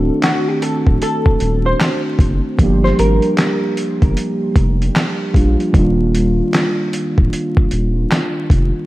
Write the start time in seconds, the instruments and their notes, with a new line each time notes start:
Already playing: sub bass D1, synth keys D#3 A3 C4 D4 F#4, hollow-body jazz guitar A4
0.23 hollow-body jazz guitar F#4, snare, clap, closed hi-hat
0.48 hollow-body jazz guitar G4
0.62 hollow-body jazz guitar A4, closed hi-hat
0.87 sub bass D1, kick
1.02 hollow-body jazz guitar A4, closed hi-hat
1.26 kick
1.40 sub bass D#1, closed hi-hat
1.66 hollow-body jazz guitar C5
1.80 snare, clap, closed hi-hat
2.19 sub bass F#1, kick, closed hi-hat
2.58 sub bass G1, synth keys F3 G3 A#3, kick, closed hi-hat
2.62 synth keys D4 G4
2.84 hollow-body jazz guitar C5, snare
2.99 sub bass G#1, hollow-body jazz guitar A#4, closed hi-hat
3.22 closed hi-hat
3.38 snare, clap, closed hi-hat
3.77 closed hi-hat
4.02 sub bass G1, kick, closed hi-hat
4.17 closed hi-hat
4.56 sub bass F1, kick, closed hi-hat
4.82 closed hi-hat
4.96 snare, clap, closed hi-hat
5.33 sub bass A#1, synth keys F3 G3 A#3 D4 F4, kick, closed hi-hat
5.60 closed hi-hat
5.72 sub bass D#1, synth keys D#3 G3 A#3, kick, closed hi-hat
5.77 synth keys D4 F4
6.15 closed hi-hat
6.54 snare, clap, closed hi-hat
6.93 closed hi-hat
7.18 sub bass D1, kick
7.33 closed hi-hat
7.57 kick
7.71 sub bass D#1, closed hi-hat
8.11 snare, clap, closed hi-hat
8.50 sub bass F1, kick, closed hi-hat